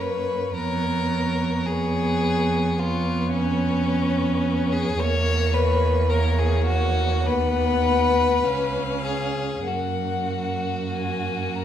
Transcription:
Already playing: cello F#2, viola A#3, violin C#5
0.01 violin B4
0.55 cello F2, viola B3, violin A#4 C#5
1.67 viola B3, violin G#4 C#5
2.78 viola B3, violin F4 C#5
3.32 violin C#4
4.72 violin G#4
4.98 cello E2, viola A#3, violin C#5
5.53 violin B4
6.09 viola A#3, violin A#4 C#5
6.39 violin G#4
6.66 violin F#4
7.25 cello D#2, viola B3, violin B4 F#5
8.43 cello C#2, viola C#4, violin F5
9.04 violin G#4
9.66 cello F#2, viola A#3, violin F#4 F#5
10.92 violin G#5
11.54 violin A#5

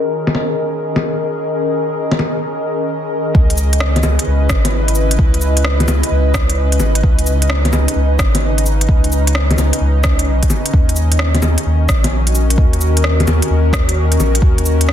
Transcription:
Already playing: analog synth pad D#3 C#4 G#4 A#4 D#5
0.27 low bongo
0.35 low bongo
0.96 low bongo
2.12 low bongo
2.19 low bongo
3.35 sub bass C#2, analog synth pad C#3, kick
3.44 analog synth pad C#4
3.50 closed hi-hat
3.58 cabasa
3.71 analog synth pad B4, closed hi-hat
3.80 cross-stick
3.96 closed hi-hat, low bongo
4.03 sub bass C#2, analog synth pad E4, low bongo, cabasa
4.19 closed hi-hat
4.27 sub bass C#2
4.49 sub bass G#1, kick, cross-stick, cabasa
4.65 closed hi-hat, low bongo
4.88 closed hi-hat
4.95 cabasa
5.11 closed hi-hat
5.19 sub bass C#2, kick
5.34 closed hi-hat
5.41 cabasa
5.57 closed hi-hat
5.65 cross-stick
5.80 closed hi-hat, low bongo
5.88 sub bass C#2, low bongo, cabasa
6.03 closed hi-hat
6.11 sub bass C#2
6.34 kick, cross-stick, cabasa
6.49 closed hi-hat
6.72 closed hi-hat
6.80 sub bass G#1, low bongo, cabasa
6.95 closed hi-hat
7.01 sub bass C#2, analog synth pad D#4, kick
7.19 closed hi-hat
7.26 cabasa
7.42 closed hi-hat
7.50 cross-stick
7.65 closed hi-hat, low bongo
7.72 sub bass C#2, low bongo, cabasa
7.88 closed hi-hat
7.95 sub bass C#2
8.19 sub bass G#1, kick, cross-stick, cabasa
8.35 closed hi-hat, low bongo
8.58 closed hi-hat
8.66 cabasa
8.81 closed hi-hat
8.89 sub bass C#2, kick
9.04 closed hi-hat
9.12 cabasa
9.27 closed hi-hat
9.35 cross-stick
9.51 closed hi-hat, low bongo
9.57 sub bass C#2, low bongo, cabasa
9.73 closed hi-hat
9.81 sub bass C#2
10.04 kick, cross-stick, cabasa
10.19 closed hi-hat
10.27 sub bass B1
10.43 kick, closed hi-hat
10.50 low bongo, cabasa
10.66 closed hi-hat
10.73 sub bass D#2, analog synth pad D#3, kick
10.89 closed hi-hat
10.96 cabasa
11.12 closed hi-hat
11.19 cross-stick
11.35 closed hi-hat, low bongo
11.42 sub bass D#2, low bongo, cabasa
11.58 closed hi-hat
11.65 sub bass D#2, analog synth pad F#4
11.89 sub bass A#1, kick, cross-stick, cabasa
12.04 analog synth pad A#4, closed hi-hat, low bongo
12.27 closed hi-hat
12.35 cabasa
12.50 closed hi-hat
12.58 sub bass D#2, kick
12.73 closed hi-hat
12.81 cabasa
12.97 closed hi-hat
13.04 cross-stick
13.20 closed hi-hat, low bongo
13.27 sub bass D#2, low bongo, cabasa
13.42 closed hi-hat
13.50 sub bass D#2
13.73 kick, cross-stick, cabasa
13.89 closed hi-hat
14.12 closed hi-hat
14.19 sub bass A#1, low bongo, cabasa
14.35 closed hi-hat
14.42 sub bass D#2, kick
14.58 closed hi-hat
14.66 cabasa
14.81 closed hi-hat
14.89 cross-stick

